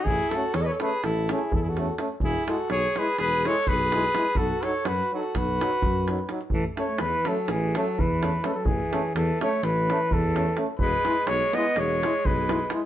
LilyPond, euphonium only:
\new Staff \with { instrumentName = "Euphonium" } { \time 9/8 \key a \lydian \tempo 4. = 84 r8 cis'8 r8 cis'8 r8 cis'8 r8 cis'8 cis'8 | r8 e'8 r8 e'8 r8 e'8 r8 e'8 e'8 | r8 dis'8 r8 dis'8 r8 dis'8 r8 dis'8 dis'8 | r8 cis'8 r8 cis'8 r8 cis'8 r8 cis'8 cis'8 |
r8 cis'8 r8 cis'8 r8 cis'8 r8 cis'8 cis'8 | r8 e'8 r8 e'8 r8 e'8 r8 e'8 e'8 | }